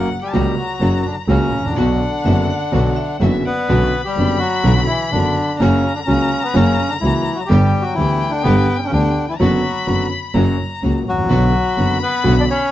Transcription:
Already playing: F#5
0.22 G3 G4
0.32 C#2 C#3 F#3 A#3 C#4 F#4 A#5
0.58 F#3 F#4
0.80 F#1 F#2 C#3 F#3 A#3 C#4 F#4
1.05 D3 D4
1.28 C#2 C#3 F#3 A#3 C#4 F#4 A#5
1.52 A1
1.59 G#1
1.65 A1 D3 D4
1.70 A#1
1.76 B1 B2 D3 F#3 B3 D4 F#4 F#5
2.24 F#1 F#2 D3 F#3 B3 D4 F#4 E5
2.50 F#5
2.72 B1 B2 D3 F#3 B3 D4 F#4
2.96 E5
3.20 F#1 F#2 D3 F#3 B3 D4 F#4 E5
3.45 B3 B4 D5 F#5
3.69 B1 B2 D3 B3 C#4 D4 F#4 B5
4.05 G3 G4
4.16 F#1 F#2 D3 B3 C#4 D4 F#4
4.38 F#3 F#4
4.64 B1 B2 D3 B3 C#4 D4 F#4
4.75 F#3 F#4
4.87 E3 E4
5.11 F#1 F#2 D3 B3 C#4 D4 F#4
5.59 F#1 F#2 C#3 F#3 A#3 C#4 F#4 A#5
5.94 D3 D4
6.06 C#2 C#3 F#3 A#3 C#4 F#4
6.42 B3 B4
6.54 F#1 F#2 C#3 F#3 A#3 C#4 F#4
6.88 D3 D4
7.00 C#2 C#3 E3 F#3 A#3 C#4 E4 F#4
7.35 F#3 F#4
7.46 G1 G2 D3 G3 B3 G4 G5
7.50 G1 B3 D4 G4
7.81 F#3 F#4
7.94 D2 D3 E3 G3 B3 D4 E4
7.98 B3 G4
8.30 D3 D4
8.42 G1 G2 D3 G3 B3 D4 G4 B4
8.79 C#4
8.84 C#3 C#4 D4
8.91 D2 D3 G3 B3 D4 G4
9.29 E3 E4
9.39 F#1 F#2 D3 F#3 B3 D4 F#4 B5
9.87 F#1 F#2 D3 F#3 B3 D4 F#4
10.34 F#1 F#2 C#3 F#3 A#3 C#4 F#4 A#5
10.83 C#2 C#3 F#3 A#3 C#4 F#4
11.06 A1 F#3 F#4
11.12 G#1
11.18 A1
11.24 A#1
11.29 B1 B2 D3 F#3 B3 D4 F#4 B5
11.77 F#1 F#2 D3 F#3 B3 D4 F#4
12.02 B3 B4
12.24 B1 B2 D3 F#3 B3 D4 F#4
12.39 D4 D5
12.50 C#4 C#5

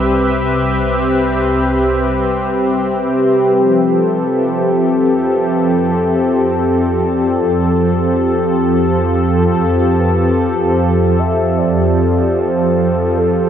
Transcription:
Already playing: C2 C3 G3 C4 G4 B4 E5
2.77 G4
3.56 F2 F3 A4
3.82 A4
4.36 A4
5.16 B4
5.98 C5
6.79 D5
9.99 B4
10.38 C5
11.19 E5
11.58 D5
12.39 C5
13.17 A4

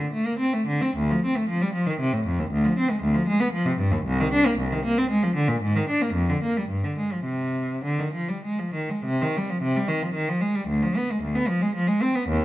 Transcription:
0.00 D3
0.13 A3
0.26 A#3
0.39 C4
0.53 A3
0.67 D3
0.81 C4
0.97 D2
1.11 F3
1.25 C4
1.37 A3
1.49 F3
1.62 G3
1.74 F3
1.86 D#3
2.00 C3
2.13 A2
2.26 F2
2.39 D#2
2.51 D2
2.65 F3
2.79 C4
2.91 G#3
3.03 D2
3.14 F3
3.28 G#3
3.41 B3
3.53 F3
3.66 C3
3.78 G2
3.92 D#2
4.06 C2
4.21 D#3
4.33 D4
4.46 A#3
4.59 C2
4.72 D#3
4.85 A#3
4.98 C4
5.10 G#3
5.23 F3
5.36 D3
5.48 A#2
5.63 G#2
5.76 D#3
5.89 D4
6.02 A#3
6.14 F2
6.29 D3
6.43 A#3
6.57 G3
6.69 G2
6.84 D3
6.98 G#3
7.13 F3
7.25 C3
7.85 D3
7.99 D#3
8.14 F3
8.29 G3
8.45 G#3
8.59 F3
8.74 D#3
8.90 G#3
9.05 C3
9.22 D#3
9.37 G3
9.50 F3
9.62 C3
9.76 G3
9.88 D#3
10.03 F3
10.14 D#3
10.29 F3
10.41 G#3
10.55 G3
10.68 D2
10.82 F3
10.97 B3
11.11 G#3
11.23 D2
11.35 B3
11.48 F3
11.62 G#3
11.75 F3
11.88 G#3
12.02 C4
12.15 B3
12.29 D#2

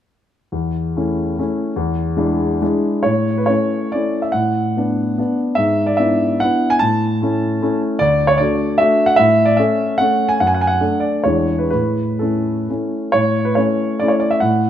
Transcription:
0.52 E2
0.97 A3 C#4 E4
1.38 A3 C#4 E4
1.76 E2
2.17 G#3 D4 E4
2.62 G#3 D4 E4
3.03 A2 C#5
3.38 B4
3.46 A3 C#4 E4 C#5
3.92 A3 C#4 E4 D5
4.22 E5
4.32 A2 F#5
4.77 B3 D4
5.18 B3 D4
5.55 G#2 E5
5.86 D5
5.97 B3 D4 E4 E5
6.40 B3 D4 E4 F#5
6.70 G#5
6.79 A2 A5
7.22 A3 C#4 E4
7.62 A3 C#4 E4
7.99 D2 D5
8.27 C#5
8.38 A3 D4 F#4 D5
8.78 A3 D4 F#4 E5
9.06 F#5
9.16 A2 E5
9.45 D5
9.57 A3 C#4 A4 E5
9.98 A3 C#4 A4 F#5
10.29 G#5
10.40 F#2 F#5
10.47 G#5
10.54 F#5
10.61 G#5
10.67 F#5
10.80 A3 D4 A4
11.00 D5
11.24 E2 G#3 D4 E4 C#5
11.59 B4
11.70 A2 B4
12.19 A3 C#4 E4 A4
12.69 A3 C#4 E4
13.12 A2 C#5
13.45 B4
13.55 A3 C#4 E4 C#5
13.99 A3 C#4 E4 D5
14.08 C#5
14.20 D5
14.31 E5
14.40 A2 F#5

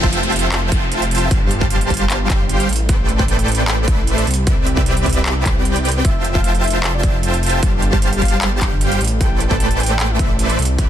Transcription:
Already playing: F1 F4 C5 E5 G5 A5, downlifter
0.04 kick
0.13 closed hi-hat
0.23 closed hi-hat
0.32 closed hi-hat
0.36 closed hi-hat
0.39 closed hi-hat
0.52 clap, closed hi-hat
0.72 F4 C5 E5, kick, closed hi-hat
0.92 closed hi-hat
1.02 closed hi-hat
1.11 closed hi-hat
1.15 closed hi-hat
1.18 closed hi-hat
1.31 G1 G3, kick, closed hi-hat
1.51 closed hi-hat
1.61 kick
1.70 closed hi-hat
1.81 closed hi-hat
1.90 kick, closed hi-hat
1.94 closed hi-hat
1.97 closed hi-hat
2.10 clap, closed hi-hat
2.30 kick, clap, closed hi-hat
2.49 closed hi-hat
2.60 closed hi-hat
2.69 A1, closed hi-hat
2.73 closed hi-hat
2.76 closed hi-hat
2.89 A3 A4 B4 C5 D5 G5, kick, closed hi-hat
3.09 closed hi-hat
3.19 kick
3.28 closed hi-hat
3.39 closed hi-hat
3.48 closed hi-hat
3.52 closed hi-hat
3.55 closed hi-hat
3.68 clap, closed hi-hat
3.88 A3 B4 C5, kick, closed hi-hat
4.07 closed hi-hat
4.18 closed hi-hat
4.27 C2, closed hi-hat
4.31 closed hi-hat
4.34 closed hi-hat
4.47 C4 G4 B4 D5 E5, kick, closed hi-hat
4.67 closed hi-hat
4.77 kick
4.86 closed hi-hat
4.97 closed hi-hat
5.06 kick, closed hi-hat
5.09 closed hi-hat
5.13 closed hi-hat
5.26 clap, closed hi-hat
5.46 C4 G4 B4 D5, kick, clap, closed hi-hat
5.56 C4 G4 B4 D5 G5
5.65 closed hi-hat
5.76 closed hi-hat
5.85 closed hi-hat
5.89 closed hi-hat
5.92 closed hi-hat
6.05 F1 E5 G5 A5, kick, closed hi-hat
6.24 closed hi-hat
6.35 F5, kick
6.44 closed hi-hat
6.55 closed hi-hat
6.64 E5, closed hi-hat
6.67 closed hi-hat
6.70 closed hi-hat
6.84 clap, closed hi-hat
6.94 D5
7.03 F4 C5 E5 G5 A5, kick, closed hi-hat
7.23 closed hi-hat
7.34 closed hi-hat
7.43 closed hi-hat
7.46 closed hi-hat
7.49 closed hi-hat
7.63 G1 G3 G4 C5, kick, closed hi-hat
7.82 closed hi-hat
7.93 kick
8.02 closed hi-hat
8.13 closed hi-hat
8.22 F5, kick, closed hi-hat
8.25 closed hi-hat
8.28 closed hi-hat
8.42 clap, closed hi-hat
8.61 G3 G4 C5 F5 G5, kick, clap, closed hi-hat
8.81 closed hi-hat
8.92 closed hi-hat
9.01 A1, closed hi-hat
9.04 closed hi-hat
9.08 closed hi-hat
9.21 A3 A4 B4 C5 D5 G5, kick, closed hi-hat
9.40 closed hi-hat
9.51 A5, kick
9.60 closed hi-hat
9.71 closed hi-hat
9.80 G5, closed hi-hat
9.83 closed hi-hat
9.86 closed hi-hat
10.00 clap, closed hi-hat
10.10 E5
10.19 A3 A4 B4 C5 E5, kick, closed hi-hat
10.39 closed hi-hat
10.50 closed hi-hat
10.59 C2, closed hi-hat
10.62 closed hi-hat
10.65 closed hi-hat
10.78 C4 G4 B4 D5 E5, kick, closed hi-hat

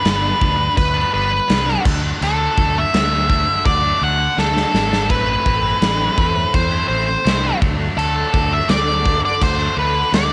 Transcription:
Already playing: B4
0.04 G1 G2 D3 G3 B3 D4, snare, crash
0.40 D2 D3 G3 B3 D4, kick
0.58 muted distorted electric guitar stroke
0.77 D2 B4, kick, crash
0.94 G3 B3 D4
1.11 G1 D3 G3 B3 D4 B4
1.31 muted distorted electric guitar stroke
1.48 C2 G2 D3 G3 B3 D4, snare, crash
1.68 snare
1.85 D2 D3 F#3 A3 D4, kick, crash
2.03 F#3 A3 D4
2.21 D2 D3 F#3 A3 D4 A4, crash
2.57 D2 D3 F#3 A3 D4, kick
2.78 E5
2.93 D2 D3 F#3 A3 D4, snare, crash
3.29 D3 F#3 A3 D4, kick, snare
3.47 muted distorted electric guitar stroke
3.65 D2 D5, kick, crash
3.83 F#3 A3 D4
4.01 D2 D3 F#3 A3 D4 F#5
4.19 muted distorted electric guitar stroke
4.37 D2 D3 F#3 A3 D4 A4, snare
4.57 snare
4.73 G#1 D3 F#3 A3 D4, snare
4.91 F#3 A3 D4, snare
5.09 A1 A2 E3 A3 C4 E4 A4 B4 B5, kick, crash
5.45 A1 E3 A3 C4 E4, kick
5.81 A1 A2 E3 A3 C4 E4, snare, crash
6.17 E2 E3 A3 C4 E4, kick
6.34 muted distorted electric guitar stroke
6.54 E2 C5, kick, crash
6.71 A3 C4 E4
6.88 A1 E3 A3 C4 E4 C5
7.07 muted distorted electric guitar stroke
7.25 C2 A2 E3 A3 C4 E4, snare, crash
7.61 D2 D3 F#3 A3 D4 A4 F#5 D6, kick
7.79 F#3 A3 D4
7.96 D2 D3 F#3 A3 D4 A4, crash
8.33 D2 D3 F#3 A3 D4, kick
8.53 E5
8.69 D2 D3 F#3 A3 D4 D5, snare, crash
9.04 D3 F#3 A3 D4, kick, snare
9.23 D5, muted distorted electric guitar stroke
9.42 D2 C5, kick, crash
9.58 F#3 A3 D4
9.75 D2 D3 F#3 A3 D4 B4
9.94 muted distorted electric guitar stroke
10.12 D2 D3 F#3 A3 D4 D5, snare, crash

